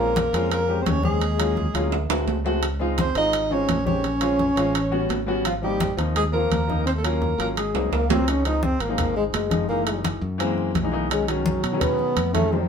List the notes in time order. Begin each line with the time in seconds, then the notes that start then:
Already playing: A#1 G#3 A#3 C4 A#4
0.00 C#4 F4
0.16 high conga, high timbale, low timbale
0.33 F2 G#3 C4 C#4 F4, high conga, high timbale
0.51 A#3 A#4, high conga, high timbale
0.68 G#3 C4 C#4 G4, high conga
0.82 C4 C5
0.86 D#2 C#4 C#5, high conga, high timbale, low timbale
1.02 G#3 C4 C#4 G#4, high conga
1.22 high conga, high timbale
1.38 F#3 A#3 C#4 F4, high conga, high timbale
1.57 high conga, low timbale
1.74 D2 F#3 A#3 C#4 F4, high conga, high timbale
1.92 high conga, high timbale
2.09 D2 G#3 A3 C4 F#4, high conga, high timbale
2.27 C#2, high conga, low timbale
2.44 G#3 A3 C4 F#4, low timbale
2.63 high conga, high timbale
2.79 G#3 C4 D#4 F4, high conga
2.98 C4 C5, high conga, high timbale, low timbale
3.15 G#1 G#3 C4 D#4 F4 D#5, high conga, high timbale
3.33 high conga, high timbale
3.49 G#3 C4 C#4 D#4 F4 C#5, high conga
3.69 A#1, high conga, high timbale, low timbale
3.85 G#3 C4 C#4 D#4 G4 C#5, high conga
4.04 high conga, high timbale
4.20 G#3 C4 C#4 F4, high conga, high timbale
4.39 high conga, low timbale
4.56 A1 G#3 C4 C#4 F4, high conga, high timbale
4.75 high conga, high timbale
4.90 G3 B3 C#4 F#4, high conga
5.09 G#1, high conga, high timbale, low timbale
5.26 G3 B3 C#4 F#4
5.45 F3 F4, high conga, high timbale
5.62 F3 G3 A#3 C4 D#4 G4, high conga
5.80 high conga, high timbale, low timbale
5.97 D#2 F3 A#3 C4 D#4, high conga, high timbale
6.16 G#3 G#4, high conga, high timbale
6.32 F3 A#3 C4 F4 A#4, high conga
6.50 D#2, high conga, high timbale, low timbale
6.67 F3 A#3 C4 D#4, high conga
6.85 C4 C5, high conga, high timbale
6.95 A3 A4
7.02 F#3 A#3 C#4 F4 A#4, high conga, high timbale
7.22 high conga, low timbale
7.38 G#1 F#3 A#3 C#4 F4 A#4, high conga, high timbale
7.57 G#3 G#4, high conga, high timbale
7.74 C2 F#3 A#3 C4 D#4, high conga, high timbale
7.92 C#2 A#3, high conga, high timbale
8.09 F#3 A#3 C4 F4, high conga, low timbale
8.27 F3 G#3 C4 C#4 D#4, high timbale
8.45 F3 G#3 C4 D#4 F4, high conga, high timbale
8.63 C4, high conga
8.80 G#1 A#3, high conga, high timbale
8.88 F3 G#3 C4 D#4
8.98 high conga, low conga, high timbale
9.16 G#3, high conga
9.33 F#1 G#3, high conga, high timbale, low timbale
9.50 F3 G#3 C4 D#4, high conga, high timbale
9.68 E3 G#3 A#3 D#4, high conga
9.87 high conga, high timbale
10.04 high conga, high timbale
10.21 F#2, high conga
10.38 E3 G#3 A#3 C4, high conga, high timbale
10.58 high conga
10.74 B1, high conga, high timbale, low timbale
10.82 E3 G#3 A#3 D#4
10.92 E3 G#3 A#3 D#4
11.10 D#3 F#3 G#3 C#4, high conga, high timbale
11.27 D#3 F#3 G#3 C#4, high conga, high timbale
11.46 high conga
11.63 B2, high conga, high timbale
11.72 D#3 F#3 G#3 C#4
11.81 B3, high conga, low conga, high timbale
11.99 high conga
12.16 F2, high conga, high timbale, low timbale
12.33 D#3 F#3 G#3 A3 C#4, high conga, high timbale
12.51 D#3 F#3 A3 C4, high conga